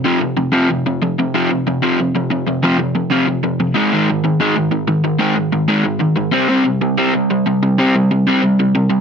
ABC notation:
X:1
M:4/4
L:1/8
Q:1/4=186
K:Cdor
V:1 name="Overdriven electric guitar" clef=bass
[F,,C,F,] [F,,C,] [F,,C,] [F,,C,F,] [F,,C,] [F,,C,] [F,,C,] [F,,C,] | [F,,C,F,] [F,,C,] [F,,C,] [F,,C,F,] [F,,C,] [F,,C,] [F,,C,] [F,,C,] | [F,,C,F,] [F,,C,] [F,,C,] [F,,C,F,] [F,,C,] [F,,C,] [F,,C,] [_A,,E,_A,] | [_A,,E,_A,] [A,,E,] [A,,E,] [A,,E,A,] [A,,E,] [A,,E,] [A,,E,] [A,,E,] |
[_A,,E,_A,] [A,,E,] [A,,E,] [A,,E,A,] [A,,E,] [A,,E,] [A,,E,] [C,G,C] | [C,G,C] [C,G,] [C,G,] [C,G,C] [C,G,] [C,G,] [C,G,] [C,G,] | [C,G,C] [C,G,] [C,G,] [C,G,C] [C,G,] [C,G,] [C,G,] [C,G,] |]